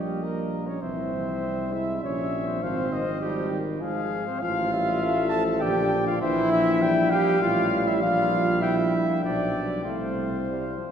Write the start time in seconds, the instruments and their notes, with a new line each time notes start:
Already playing: tuba A#1, trombone G3, french horn G3, flugelhorn G4, cornet D#5
0.23 trombone A#3, flugelhorn A#4
0.67 trombone C#4, flugelhorn C#5
0.82 tuba C2, french horn E3, trombone C4, flugelhorn C5, cornet E5
1.14 french horn F3
1.43 french horn G3
1.73 french horn G#3, trombone E4, flugelhorn E5
2.02 tuba A#1, french horn G3, trombone C#4, flugelhorn C#5, cornet E5
2.47 trombone C4, flugelhorn C5
2.61 tuba G#1, french horn F3, trombone C4, flugelhorn C5, cornet F5
2.91 french horn D#3, cornet D#5
3.20 french horn F3, trombone G3, flugelhorn G4
3.51 french horn D#3
3.80 french horn F3, trombone G#3, flugelhorn G#4, cornet F5
4.27 trombone C4, flugelhorn C5
4.40 tuba A1, french horn F3, trombone F4, flugelhorn F5, cornet F5
4.73 french horn G3, cornet E5
5.03 french horn A3
5.29 trombone A4, flugelhorn A5
5.33 french horn F3
5.60 tuba A#1, french horn D3, trombone G4, cornet D5, flugelhorn G5
6.06 trombone F4, flugelhorn F5
6.21 tuba A#1, french horn E3, trombone E4, cornet C5, flugelhorn E5
6.52 cornet E5
6.81 french horn G3, cornet G5
7.11 trombone G4, cornet F5, flugelhorn G5
7.42 tuba A1, trombone F4, flugelhorn F5
7.87 trombone E4, flugelhorn E5
8.01 tuba A#1, trombone F4, cornet F5, flugelhorn F5
8.62 trombone E4, flugelhorn E5, cornet G5
8.92 cornet G5
9.23 tuba B1, french horn F3, trombone D4, flugelhorn D5
9.54 french horn G3
9.84 tuba C2, french horn A3, trombone C4, flugelhorn C5, cornet F5
10.47 french horn G3
10.78 french horn F3